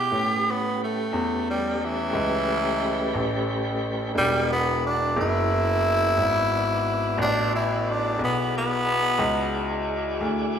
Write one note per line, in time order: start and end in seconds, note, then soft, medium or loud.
0.00 0.52 G4 medium
0.11 1.10 A2 medium
0.11 4.12 A3 medium
0.11 4.12 C#4 medium
0.11 4.12 G4 medium
0.11 4.12 B4 medium
0.50 0.81 B3 medium
0.84 1.47 A3 medium
1.13 2.11 E2 medium
1.50 1.86 G3 medium
1.84 3.80 E3 loud
2.13 3.12 C#2 medium
3.14 4.12 A1 medium
4.15 5.13 E1 medium
4.15 4.49 G3 loud
4.15 8.15 B3 medium
4.15 8.15 E4 medium
4.15 8.16 F#4 medium
4.15 8.15 D5 medium
4.52 4.83 B3 medium
4.86 5.17 D4 medium
5.17 6.15 F#1 medium
5.17 7.16 E4 loud
6.17 7.15 G#1 medium
7.18 8.16 A1 loud
7.18 7.53 D4 loud
7.55 7.92 E4 medium
7.91 8.21 D4 medium
8.19 9.17 B1 medium
8.19 10.59 E4 medium
8.19 10.59 F#4 medium
8.19 10.59 G#4 medium
8.19 10.59 D5 medium
8.24 8.54 B3 medium
8.58 9.86 B3 loud
9.19 10.17 C#2 medium
10.21 10.59 D2 medium